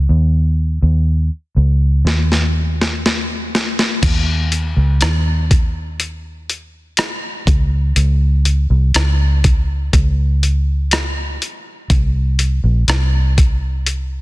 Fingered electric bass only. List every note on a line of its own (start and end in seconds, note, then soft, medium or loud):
0.09 0.79 D#2 medium
0.82 1.28 D#2 medium
1.56 2.02 C#2 medium
2.05 3.98 D#2 medium
4.03 4.72 D#2 medium
4.77 4.99 C#2 medium
5.01 7.43 D#2 medium
7.47 7.93 C#2 medium
7.96 8.66 C#2 medium
8.70 8.93 C2 medium
8.95 9.89 C#2 medium
9.93 11.37 C#2 medium
11.90 12.59 C2 medium
12.64 12.86 A#1 medium
12.88 14.22 C2 medium